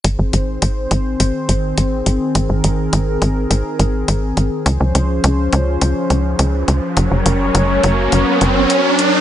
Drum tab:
HH |xxxxxxxx|xxxxxxxx|xxxxxxxx|xxxxxxxx|